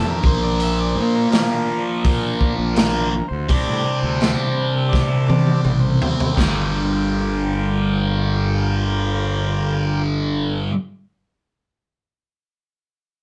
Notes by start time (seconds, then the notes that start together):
Already playing: F2 C3 F3 G3 A3
0.08 A#4
0.21 A#1 A#2 F3, kick
0.25 A#3 C5
0.43 D5
0.60 E5, open hi-hat
0.80 D5
0.95 A#2 C5
1.15 A#4
1.30 F3 A#3 D4, snare, open hi-hat
2.05 A#2, kick, open hi-hat
2.41 kick
2.58 A#1
2.74 A#2 F3 A#3 D4 A#4, snare, open hi-hat
2.79 A#3
3.28 D2 C5
3.48 C2 C3 G3 C4 D4, kick, open hi-hat
3.54 D5
3.67 A2
3.99 C5
4.03 D2
4.21 snare, open hi-hat
4.89 D5
4.93 kick, snare
5.07 E5
5.27 C3 G3 C4 D4 D5, high tom
5.47 high tom
5.65 A1, mid tom
5.80 C5
6.02 C3 G3 C4, floor tom
6.20 floor tom
6.35 G1 G2 D3 A#3 F4 G4 D5 G5, kick, snare, china
6.40 G3